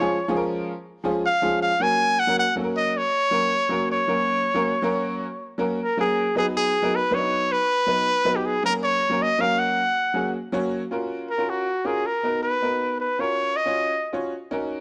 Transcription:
Already playing: C#5
0.00 F3 G#3 C#4 F4 G#4
0.28 F3 G#3 C#4 F4 G#4
0.36 A#4
1.04 F3 G#3 C#4 F4 G#4
1.26 F5
1.42 F3 G#3 C#4 F4 G#4
1.62 F5
1.80 F#3 A#3 C#4 F#4 A#4 G#5
2.19 F#5
2.27 F#3 A#3 C#4 F#4 A#4
2.39 F#5
2.56 F#3 A#3 C#4 F#4 A4
2.64 A#4
2.77 D#5
2.97 C#5
3.31 F#3 A#3 C#4 F#4 A#4
3.69 F#3 A#3 C#4 F#4 A#4
3.91 C#5
4.08 F#3 A#3 C#4 F#4 A#4
4.54 F#3 A#3 C#4 F#4 A#4
4.82 F#3 A#3 C#4 F#4 A#4
5.58 F#3 A#3 C#4 F#4 A#4
5.81 A#4
5.97 F#3 A#3 C#4 F#4 G#4 A#4
6.35 F#3 B3 D#4 F#4 G#4 B4
6.57 G#4
6.82 F#3 B3 D#4 F#4 A#4
6.96 B4
7.11 F#3 B3 D4 F#4 B4 C#5
7.18 D#4
7.52 B4
7.86 F#3 B3 D#4 F#4 B4
8.25 F#3 B3 D#4 F#4 B4
8.36 G4
8.45 G#4
8.63 F#3 A#3 C#4 F#4 A#4
8.83 C#5
9.09 F#3 A#3 C#4 F#4 A#4
9.22 D#5
9.39 F#3 A#3 C#4 F#4 A#4 F5
9.59 F#5
10.14 F#3 A#3 C#4 F#4 G#4
10.52 F#3 A#3 C#4 F#4 C#5
10.91 C#4 F4 F#4 A#4
11.30 A#4
11.38 C#4 F4 F#4 A#4
11.50 F#4
11.84 C#4 F4 F#4 G#4 A#4
12.06 A#4
12.23 B3 D#4 F#4 A#4
12.43 B4
12.62 B3 D#4 F#4 A#4
13.00 B4
13.19 C#4 F4 F#4 A#4 C#5
13.57 D#5
13.65 C#4 F4 F#4 C#5
14.13 C#4 F4 F#4 C#5
14.51 C#4 D#4 F#4 A#4

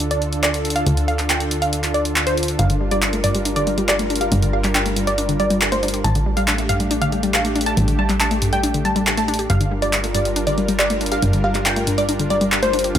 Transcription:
Already playing: D2 D3 D4 F4 A4
0.00 closed hi-hat
0.11 D5, closed hi-hat
0.22 closed hi-hat
0.33 closed hi-hat
0.43 D5, clap, closed hi-hat
0.54 closed hi-hat
0.65 closed hi-hat
0.70 closed hi-hat
0.76 F5, closed hi-hat
0.86 D2, closed hi-hat
0.97 closed hi-hat
1.08 F5, closed hi-hat
1.19 clap, closed hi-hat
1.30 G5, clap, closed hi-hat
1.40 closed hi-hat
1.51 closed hi-hat
1.62 F5, closed hi-hat
1.73 closed hi-hat
1.84 clap, closed hi-hat
1.94 D5, closed hi-hat
2.05 closed hi-hat
2.16 clap, closed hi-hat
2.27 C5, closed hi-hat
2.37 closed hi-hat
2.43 closed hi-hat
2.48 closed hi-hat
2.59 G1 G3 A#4 F5, closed hi-hat
2.70 D3, closed hi-hat
2.81 G3
2.91 G3 D5, closed hi-hat
3.02 D4, clap, closed hi-hat
3.13 A3, closed hi-hat
3.24 G2 D5, closed hi-hat
3.35 G3, closed hi-hat
3.45 D4, closed hi-hat
3.56 D3 D5, closed hi-hat
3.67 G3, closed hi-hat
3.78 G3, closed hi-hat
3.89 G4 D5, clap, closed hi-hat
3.99 A3, closed hi-hat
4.10 D4, closed hi-hat
4.16 closed hi-hat
4.21 G4 F5, closed hi-hat
4.32 G1 G3, closed hi-hat
4.42 D3, closed hi-hat
4.53 G3 F5
4.64 G3, clap, closed hi-hat
4.75 D4 G5, clap, closed hi-hat
4.86 A3, closed hi-hat
4.96 G2, closed hi-hat
5.07 G3 D5, closed hi-hat
5.18 D4, closed hi-hat
5.29 D3, closed hi-hat
5.40 G3 D5, closed hi-hat
5.50 G3, closed hi-hat
5.61 G4, clap, closed hi-hat
5.72 A3 C5, closed hi-hat
5.83 D4, closed hi-hat
5.88 closed hi-hat
5.94 G4, closed hi-hat
6.04 A1 G3 A3 D4 G4 A5, closed hi-hat
6.15 D3, closed hi-hat
6.26 G3
6.37 G3 F5, closed hi-hat
6.48 D4, clap, closed hi-hat
6.58 A3, closed hi-hat
6.69 G2 F5, closed hi-hat
6.80 G3, closed hi-hat
6.91 D4, closed hi-hat
7.02 D3 F5, closed hi-hat
7.12 G3, closed hi-hat
7.23 G3, closed hi-hat
7.34 G4 F5, clap, closed hi-hat
7.45 A3, closed hi-hat
7.55 D4, closed hi-hat
7.61 closed hi-hat
7.66 G4 A5, closed hi-hat
7.77 A1 G3, closed hi-hat
7.88 D3, closed hi-hat
7.99 G3 A5
8.09 G3, clap, closed hi-hat
8.20 D4 A5, clap, closed hi-hat
8.31 A3, closed hi-hat
8.42 G2, closed hi-hat
8.53 G3 G5, closed hi-hat
8.63 D4, closed hi-hat
8.74 D3, closed hi-hat
8.85 G3 A5, closed hi-hat
8.96 G3, closed hi-hat
9.07 G4, clap, closed hi-hat
9.17 A3 A5, closed hi-hat
9.28 D4, closed hi-hat
9.34 closed hi-hat
9.39 G4, closed hi-hat
9.50 G1 G3 D4 F4 A#4 F5, closed hi-hat
9.61 D3, closed hi-hat
9.71 G3
9.82 G3 D5, closed hi-hat
9.93 D4, clap, closed hi-hat
10.04 A3, closed hi-hat
10.14 G2 D5, closed hi-hat
10.25 G3, closed hi-hat
10.36 D4, closed hi-hat
10.47 D3 D5, closed hi-hat
10.58 G3, closed hi-hat
10.68 G3, closed hi-hat
10.79 G4 D5, clap, closed hi-hat
10.90 A3, closed hi-hat
11.01 D4, closed hi-hat
11.06 closed hi-hat
11.12 G4 F5, closed hi-hat
11.22 G1 G3, closed hi-hat
11.33 D3, closed hi-hat
11.44 G3 F5
11.55 G3, clap, closed hi-hat
11.66 D4 G5, clap, closed hi-hat
11.76 A3, closed hi-hat
11.87 G2, closed hi-hat
11.98 G3 D5, closed hi-hat
12.09 D4, closed hi-hat
12.19 D3, closed hi-hat
12.30 G3 D5, closed hi-hat
12.41 G3, closed hi-hat
12.52 G4, clap, closed hi-hat
12.63 A3 C5, closed hi-hat
12.73 D4, closed hi-hat
12.79 closed hi-hat
12.84 G4, closed hi-hat
12.95 D2 D3 G3 A4 F5, closed hi-hat

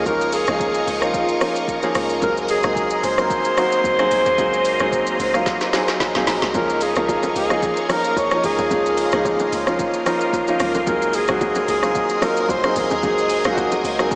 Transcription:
Already playing: F3 A#3 C#4 D#4 G#4 A#4 D#5 F5 C#6
0.06 C#2 F3 A#3 C#4 D#4 F4 A#4, kick, shaker
0.21 shaker
0.32 G#4, open hi-hat, shaker
0.47 C#2 F3 A#3 C#4 D#4 G#4, cross-stick, shaker
0.60 kick, shaker
0.74 shaker
0.87 C#2, open hi-hat, shaker
1.02 F3 A#3 C#4 D#4 F4 G#4, cross-stick, shaker
1.14 kick, shaker
1.29 shaker
1.41 F3 A#3 C#4 D#4 F4, cross-stick, open hi-hat, shaker
1.56 shaker
1.68 kick, shaker
1.83 F3 A#3 C#4 D#4 G#4, shaker
1.95 C#2, cross-stick, open hi-hat, shaker
2.10 shaker
2.22 C#2 F#3 A#3 C4 D#4 G#4 A#4 D#5 G#5 C6, kick, shaker
2.37 shaker
2.49 G#4, open hi-hat, shaker
2.63 C#2 F#3 A#3 C4 D#4 G#4, cross-stick, shaker
2.76 kick, shaker
2.90 shaker
3.03 C#2 C5, open hi-hat, shaker
3.18 F#3 A#3 C4 D#4 A#4, cross-stick, shaker
3.30 kick, shaker
3.45 shaker
3.57 F#3 A#3 C4 D#4 F#4, cross-stick, open hi-hat, shaker
3.72 shaker
3.84 C2, kick, shaker
3.99 F#3 A#3 C4 D#4 G#4, cross-stick, shaker
4.11 C2, open hi-hat, shaker
4.26 D#2, shaker
4.38 C#2 F#3 A#3 C4 D#4 G#4 A#5, kick, shaker
4.53 shaker
4.65 open hi-hat, shaker
4.79 C#2 F#3 A#3 C4 D#4 G#4, cross-stick, shaker
4.92 kick, shaker
5.07 shaker
5.19 C#2, open hi-hat, shaker
5.34 F#3 A#3 C4 D#4 F4, cross-stick, shaker
5.46 kick, snare, shaker
5.61 snare, shaker
5.73 F#3 A#3 C4 D#4 G#4, snare, open hi-hat, shaker
5.88 snare, shaker
6.00 kick, snare, shaker
6.15 C2 F#3 A#3 C4 D#4 G#4, snare, shaker
6.27 A#1, snare, open hi-hat, shaker
6.42 C2, snare, shaker
6.54 C#2 F3 A#3 C#4 D#4 G#4 A#4 D#5 F5 C#6, kick, low conga, shaker
6.70 shaker
6.81 G#4, open hi-hat, shaker
6.96 C#2 F3 A#3 C#4 D#4 A#4, cross-stick, shaker
7.08 kick, high bongo, shaker
7.23 low bongo, shaker
7.36 C#2 G#4, open hi-hat, shaker
7.50 F3 A#3 C#4 D#4 G#4, cross-stick, high bongo, shaker
7.62 kick, low conga, shaker
7.77 shaker
7.89 F3 A#3 C#4 D#4 A#4, cross-stick, open hi-hat, high bongo, low bongo, shaker
8.04 shaker
8.16 A#1 C#5, kick, high bongo, shaker
8.31 F3 A#3 C#4 D#4 A#4, cross-stick, shaker
8.44 C#2 G#4, open hi-hat, low conga, shaker
8.58 D#2, low bongo, shaker
8.70 C#2 F3 A#3 C#4 D#4 G#4 C6, kick, low conga, shaker
8.86 shaker
8.97 open hi-hat, shaker
9.12 C#2 F3 A#3 C#4 D#4 G#4, cross-stick, shaker
9.25 kick, high bongo, shaker
9.39 low bongo, shaker
9.52 C#2, open hi-hat, shaker
9.67 F3 A#3 C#4 D#4 F4, cross-stick, high bongo, shaker
9.79 kick, low conga, shaker
9.94 shaker
10.06 F3 A#3 C#4 D#4 A#4, cross-stick, open hi-hat, high bongo, low bongo, shaker
10.21 shaker
10.33 kick, high bongo, shaker
10.48 F3 A#3 C#4 D#4 F4, shaker
10.60 C#2, cross-stick, open hi-hat, low conga, shaker
10.75 low bongo, shaker
10.87 C#2 F#3 A#3 C4 D#4 G#4 A#4 D#5 G#5, kick, low conga, shaker
11.02 shaker
11.13 G#4, open hi-hat, shaker
11.28 C#2 F#3 A#3 C4 D#4 F#4, cross-stick, shaker
11.41 kick, high bongo, shaker
11.55 low bongo, shaker
11.68 C#2 G#4, open hi-hat, shaker
11.83 F#3 A#3 C4 D#4 F4, cross-stick, high bongo, shaker
11.95 kick, low conga, shaker
12.09 shaker
12.22 F#3 A#3 C4 D#4 F4 A#4, cross-stick, open hi-hat, high bongo, low bongo, shaker
12.37 shaker
12.49 C2 C5, kick, high bongo, shaker
12.64 F#3 A#3 C4 D#4 G#4, cross-stick, shaker
12.76 C2 G#4, open hi-hat, low conga, shaker
12.91 D#2, low bongo, shaker
13.03 C#2 F#3 A#3 C4 D#4 G#4, kick, low conga, shaker
13.18 shaker
13.30 open hi-hat, shaker
13.44 C#2 F#3 A#3 C4 D#4 F4, cross-stick, shaker
13.53 F#4
13.57 kick, high bongo, shaker
13.72 low bongo, shaker
13.84 C#2, open hi-hat, shaker
13.99 F#3 A#3 C4 D#4 G#4, cross-stick, high bongo, shaker
14.11 kick, low conga, shaker

